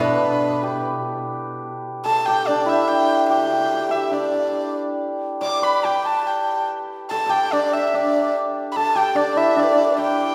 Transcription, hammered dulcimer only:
Already playing: D4 E4 A4
0.00 B3
0.63 G4
2.06 A4
2.27 G4
2.49 D4
2.66 E4
3.29 G4
3.37 G4
3.45 G4
3.53 G4
3.60 G4
3.64 G4
3.74 G4
3.80 G4
3.89 G4
3.95 G4
4.11 D4
5.41 D5
5.62 B4
5.84 G4
7.11 A4
7.26 G4 A4
7.53 D4
7.94 D4
8.76 A4
8.95 G4
9.15 D4
9.36 E4
9.57 D4
9.98 G4

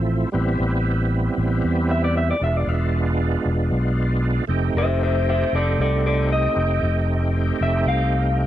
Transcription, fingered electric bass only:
Already playing: A1
0.34 A1
0.60 A1
1.38 A1
1.64 E2
2.42 E1
2.67 E1
3.45 E1
3.71 B1
4.49 F1
4.75 F1
5.53 F1
5.79 C2
6.56 F1
6.83 F1
7.61 F1
7.86 C2

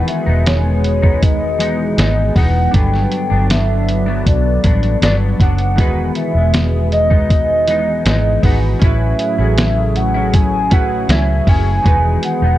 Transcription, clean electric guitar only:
Already playing: E3 G#3 B3 D#4
0.26 G#3 B3 D#4
1.02 G#3 B3 D#4
1.59 E3 G#3 B3 D#4
1.97 E3 G#3 B3 D#4
2.35 E3 G#3 B3 D#4
2.73 G2 F#3 B3 D4
3.30 F#3 B3 D4
4.06 F#3 B3 D4
4.63 G2 F#3 B3 D4
5.02 G2 F#3 B3 D4
5.41 F#3 B3 D4
5.78 E3 G#3 B3 D#4
6.36 G#3 B3
7.10 G#3 B3 D#4
7.67 E3 G#3 B3 D#4
8.05 E3 G#3 B3 D#4
8.43 E3 G#3 B3 D#4
8.81 A2 F#3 C#4 E4
9.38 F#3 C#4 E4
10.14 F#3 C#4 E4
10.71 A2 F#3 C#4 E4
11.08 A2 F#3 C#4 E4
11.47 A2 F#3 C#4 E4
11.85 E3 G#3 B3 D#4
12.42 G#3 B3 D#4

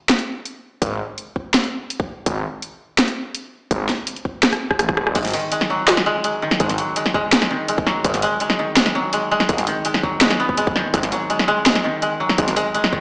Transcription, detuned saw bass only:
0.82 G#1
2.26 G#1
3.71 G#1
4.79 A1
4.97 D#1
5.16 G#1
6.60 G#1
8.05 G#1
9.49 G#1
10.94 G#1
12.38 G#1

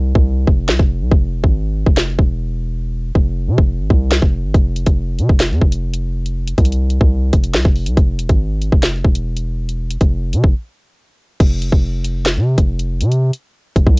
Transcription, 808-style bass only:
Already playing: C2
0.15 C2
0.47 F1
0.69 C2
0.79 F1
1.01 C2
1.11 F1
1.33 E1
1.44 G#1
1.87 F1
2.19 E1
3.15 F1
3.47 C3
3.58 F1
3.79 G#1
3.90 C2
4.22 F1
4.44 G#1
4.54 F1
4.87 F1
5.19 C3
5.29 F1
5.51 F2
5.62 F1
6.58 C2
7.01 C2
7.33 F1
7.54 C2
7.65 F1
7.86 C2
7.97 F1
8.19 E1
8.29 G#1
8.72 F1
9.04 E1
10.01 F1
10.33 C3
10.44 F1
11.40 F1
11.72 F1
12.37 C3
12.58 F1
13.01 C3
13.76 F1
13.87 C2

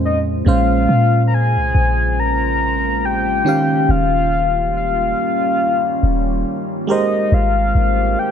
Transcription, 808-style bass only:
Already playing: F2
0.47 A#1
0.89 A#2
1.57 C2
1.75 A#1
3.89 D#1
6.03 D#1
7.32 G#1
7.75 G#1

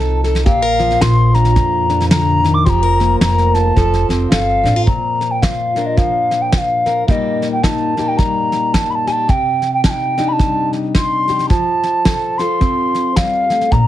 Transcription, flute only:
Already playing: A5
0.46 F5
1.01 C6
1.34 A#5
2.10 A#5
2.54 D6
2.65 C6
2.70 A#5
3.21 A#5
3.54 A5
4.30 F5
4.86 A#5
5.31 G5
5.42 F5
5.86 D#5
5.97 F5
6.42 G5
6.53 G5
6.58 F5
7.07 D#5 F5
7.52 G5
7.63 A5
8.08 G5
8.17 A#5
8.73 A5
8.90 B5
8.95 A5
9.07 G#5
9.12 A5
9.30 G5
9.74 G5
9.85 A5
9.90 G5
10.28 B5
10.33 A5
10.96 C6
11.50 A5
12.38 C6
13.16 F5
13.72 A#5

